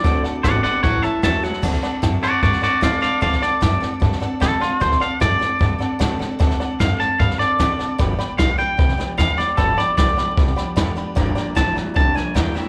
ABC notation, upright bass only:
X:1
M:4/4
L:1/8
Q:1/4=151
K:Dmix
V:1 name="Upright bass" clef=bass
D,, z ^G,,, z A,,, z E,, z | D,, z F,, z G,, z B,, z | D,, z F,, z G,, z B,, z | D,, z F,, z G,, z B,, z |
D,, z F,, z G,, z B,, z | G,,, z B,,, z C,, z E,, z | G,,, z B,,, z C,, z E,, z | G,,, z _B,,, z C,, z E,, z |]